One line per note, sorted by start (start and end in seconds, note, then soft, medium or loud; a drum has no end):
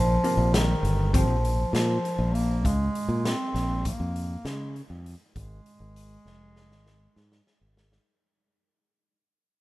0.00 0.17 A#1 medium
0.00 0.55 F3 medium
0.24 0.66 C3 soft
0.24 0.66 F3 soft
0.24 0.66 A#3 soft
0.24 closed hi-hat medium
0.37 0.73 A#1 medium
0.54 1.14 D#3 medium
0.54 snare loud
0.54 closed hi-hat medium
0.83 1.27 G1 medium
0.83 closed hi-hat soft
1.14 1.35 C3 medium
1.14 1.35 F3 medium
1.14 1.71 F3 medium
1.14 1.35 C4 medium
1.14 kick medium
1.14 closed hi-hat medium
1.27 1.63 A#1 medium
1.45 closed hi-hat soft
1.73 1.97 A#2 medium
1.73 2.35 F3 medium
1.73 snare medium
1.73 closed hi-hat medium
2.05 closed hi-hat soft
2.19 2.64 A#1 medium
2.34 2.67 A#3 medium
2.34 closed hi-hat soft
2.64 2.88 C#2 medium
2.64 3.27 G#3 medium
2.64 kick medium
2.64 closed hi-hat medium
2.95 closed hi-hat soft
3.09 3.33 A#2 medium
3.25 3.85 C4 medium
3.25 snare medium
3.25 closed hi-hat medium
3.54 3.90 A#1 medium
3.54 snare soft
3.54 closed hi-hat soft
3.85 4.48 A#3 medium
3.85 kick medium
3.85 closed hi-hat medium
4.00 4.35 F2 medium
4.16 closed hi-hat medium
4.45 4.80 C#3 medium
4.45 4.76 G#3 medium
4.45 snare medium
4.45 closed hi-hat medium
4.76 closed hi-hat medium
4.90 5.14 F2 medium
5.06 closed hi-hat soft
5.36 5.59 G#1 medium
5.36 7.73 G#3 medium
5.36 kick medium
5.36 closed hi-hat medium
5.66 closed hi-hat soft
5.80 6.16 G#1 medium
5.96 closed hi-hat medium
6.25 6.71 F1 medium
6.25 snare soft
6.56 snare medium
6.71 7.06 G#1 medium
6.71 snare soft
6.86 snare soft
7.16 7.40 G#2 medium
7.16 snare medium
7.32 snare medium
7.47 snare medium
7.61 7.97 G#1 medium
7.77 snare medium
7.92 snare medium